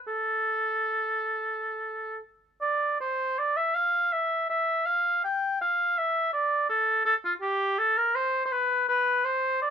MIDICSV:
0, 0, Header, 1, 2, 480
1, 0, Start_track
1, 0, Key_signature, -1, "minor"
1, 0, Tempo, 873362
1, 46, Time_signature, 3, 2, 24, 8
1, 525, Tempo, 837989
1, 1485, Tempo, 757576
1, 2445, Tempo, 733496
1, 6081, End_track
2, 0, Start_track
2, 0, Title_t, "Oboe"
2, 0, Program_c, 0, 68
2, 42, Note_on_c, 0, 69, 51
2, 1228, Note_off_c, 0, 69, 0
2, 1476, Note_on_c, 0, 74, 56
2, 1706, Note_off_c, 0, 74, 0
2, 1723, Note_on_c, 0, 72, 50
2, 1964, Note_on_c, 0, 74, 57
2, 1973, Note_off_c, 0, 72, 0
2, 2078, Note_on_c, 0, 76, 56
2, 2087, Note_off_c, 0, 74, 0
2, 2194, Note_on_c, 0, 77, 60
2, 2203, Note_off_c, 0, 76, 0
2, 2433, Note_on_c, 0, 76, 54
2, 2442, Note_off_c, 0, 77, 0
2, 2670, Note_off_c, 0, 76, 0
2, 2674, Note_on_c, 0, 76, 61
2, 2912, Note_on_c, 0, 77, 60
2, 2922, Note_off_c, 0, 76, 0
2, 3156, Note_off_c, 0, 77, 0
2, 3160, Note_on_c, 0, 79, 55
2, 3401, Note_off_c, 0, 79, 0
2, 3405, Note_on_c, 0, 77, 58
2, 3646, Note_on_c, 0, 76, 64
2, 3656, Note_off_c, 0, 77, 0
2, 3871, Note_off_c, 0, 76, 0
2, 3875, Note_on_c, 0, 74, 57
2, 4109, Note_off_c, 0, 74, 0
2, 4113, Note_on_c, 0, 69, 57
2, 4346, Note_off_c, 0, 69, 0
2, 4350, Note_on_c, 0, 69, 62
2, 4407, Note_off_c, 0, 69, 0
2, 4473, Note_on_c, 0, 65, 43
2, 4529, Note_off_c, 0, 65, 0
2, 4582, Note_on_c, 0, 67, 53
2, 4827, Note_on_c, 0, 69, 62
2, 4836, Note_off_c, 0, 67, 0
2, 4950, Note_on_c, 0, 70, 55
2, 4960, Note_off_c, 0, 69, 0
2, 5067, Note_on_c, 0, 72, 65
2, 5077, Note_off_c, 0, 70, 0
2, 5260, Note_off_c, 0, 72, 0
2, 5264, Note_on_c, 0, 72, 45
2, 5305, Note_on_c, 0, 71, 57
2, 5315, Note_off_c, 0, 72, 0
2, 5543, Note_off_c, 0, 71, 0
2, 5547, Note_on_c, 0, 71, 66
2, 5784, Note_on_c, 0, 72, 62
2, 5793, Note_off_c, 0, 71, 0
2, 6023, Note_off_c, 0, 72, 0
2, 6027, Note_on_c, 0, 74, 59
2, 6081, Note_off_c, 0, 74, 0
2, 6081, End_track
0, 0, End_of_file